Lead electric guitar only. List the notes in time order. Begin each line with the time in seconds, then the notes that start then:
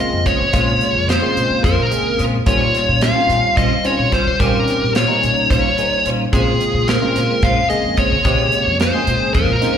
0.00 D#5
0.27 C#5
1.10 C5
1.64 A#4
2.47 C#5
3.02 F5
3.57 D#5
3.86 C#5
4.13 C5
4.41 A#4
4.96 C#5
5.51 C#5
6.33 G#4
6.88 A#4
7.43 F5
7.70 D#5
7.99 C#5
8.81 C5
9.34 A#4